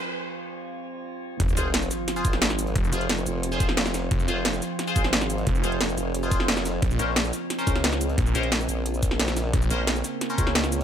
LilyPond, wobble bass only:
\new Staff \with { instrumentName = "Wobble bass" } { \clef bass \time 4/4 \key f \minor \tempo 4 = 177 r1 | r8 f,,4 r4 aes,,4. | r8 f,,4 f,,2~ f,,8 | r8 f,,4 r4 aes,,4. |
r8 f,,4 f,,2~ f,,8 | r8 bes,,4 r4 des,4. | r8 bes,,4 bes,,2~ bes,,8 | r8 bes,,4 r4 des,4. | }